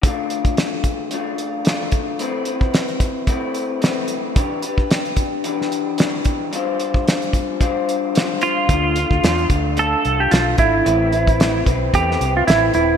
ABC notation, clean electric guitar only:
X:1
M:4/4
L:1/8
Q:"Swing 16ths" 1/4=111
K:Ddor
V:1 name="Clean electric guitar"
[D,A,DF]4 [D,A,DF]2 [D,A,DF]2 | [A,CEB] [CEB]3 [A,CEB]2 [A,CEB]2 | [E,DGB] [DGB]3 [E,DGB]2 [E,DGB]2 | [G,DFc]4 [G,DFc]2 [G,DFc]2 |
[D,A,DF] [A,DF] [D,A,DF] [A,DF] [D,A,DF] [A,DF] [D,A,DF] [A,DF] | [A,CEB] [CEB] [A,CEB] [CEB] [A,CEB] [CEB] [A,CEB] [CEB] |]